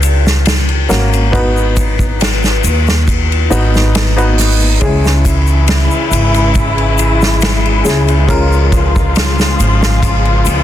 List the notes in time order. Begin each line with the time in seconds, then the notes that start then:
Already playing: C#2 A#3 C#4 F#4 A#4
0.03 ride, shaker
0.26 snare, shaker
0.46 snare, ride, shaker
0.69 ride
0.89 G#1 A#3 C#4 F#4 A#4, snare, ride, shaker
1.13 ride, shaker
1.32 B3 D#4 F#4 B4, kick, ride, shaker
1.57 shaker
1.77 kick, ride, shaker
1.99 kick, shaker
2.20 snare, ride, shaker
2.43 snare, shaker
2.64 D#2, ride, shaker
2.87 snare, shaker
3.08 kick, ride, shaker
3.32 ride
3.50 G#1 B3 D#4 F#4 B4, ride, shaker
3.74 snare, shaker
3.95 snare, ride, shaker
4.16 B3 D#4 F#4 B4, ride, shaker
4.38 snare, open hi-hat, shaker
4.60 shaker
4.80 C#2 C#3 E3 G#3 C#4 E4 G#4, kick, ride, shaker
5.04 snare, shaker
5.25 kick, ride, shaker
5.47 shaker
5.67 snare, ride, shaker
5.91 shaker
6.11 G#1, ride, shaker
6.34 ride, shaker
6.55 kick, ride, shaker
6.78 ride
6.98 ride, shaker
7.21 snare, shaker
7.41 snare, ride, shaker
7.66 ride
7.85 C#2 G#3 C#4 E4 G#4, snare, ride, shaker
8.08 ride, shaker
8.28 C#3 F3 G#3 C#4 F4 A#4, kick, ride, shaker
8.52 shaker
8.72 kick, ride, shaker
8.96 kick, shaker
9.16 snare, ride, shaker
9.39 snare, shaker
9.60 G#1, ride, shaker
9.83 snare, shaker
10.03 kick, ride, shaker
10.25 ride
10.46 C#2, ride, shaker